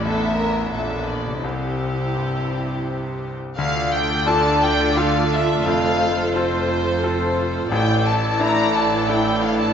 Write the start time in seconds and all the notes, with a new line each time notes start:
Already playing: A1 A2 E3 C4 E4 D5
0.03 E2 D4 A4 E5
0.38 A#4
0.72 A#1 A#2 D4 A4 E5
1.08 D5
1.26 C3
1.30 G3
1.35 E4
1.39 C2 C5
1.44 C2 C3 E4 G4 C5
2.16 G2
3.57 D2 D3 A3 F4 A4 D5 F5
3.92 A3 G5
4.27 D4 F4 A4 A5
4.62 G5
4.97 D4 F4 A4 F5
5.31 D4 E5
5.65 F1 F2 F3 C5 F5
6.00 C5
6.34 C4 F4 A4 C5
6.69 C5
7.03 C4 F4 A4
7.37 F4
7.71 A1 A2 E3 E4 A4 D5 G5
8.06 A5
8.39 A3 D4 E4 A#5
8.73 A4 A5
9.07 D4 E4 A4 G5
9.41 D4 F5
9.59 A5